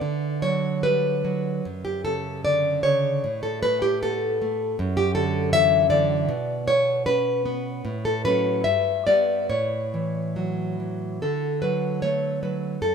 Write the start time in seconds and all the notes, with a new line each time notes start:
Already playing: D5
0.01 D3
0.42 F#3 C#5
0.83 G3 B4
1.25 F#3
1.65 F#2
1.85 G4
2.05 C#3 A4
2.45 D3 D5
2.83 C#3 C#5
3.24 A2
3.43 A4
3.63 A3 B4
3.82 G4
4.02 B3 A4
4.42 A3
4.79 F#2
4.97 G4
5.15 D3 A4
5.53 E3 E5
5.90 D3 D5
6.29 B2
6.67 B3 C#5
7.06 C#4 B4
7.46 B3
7.85 A2
8.05 A4
8.25 F#3 C#4 B4
8.64 G2 E5
9.07 G3 B3 D5
9.49 A2 C#5
9.94 E3
10.36 F#3
10.80 E3
11.22 D3 A4
11.62 F#3 B4
12.02 F#3 A3 C#5
12.43 F#3 B4
12.82 F#2 A4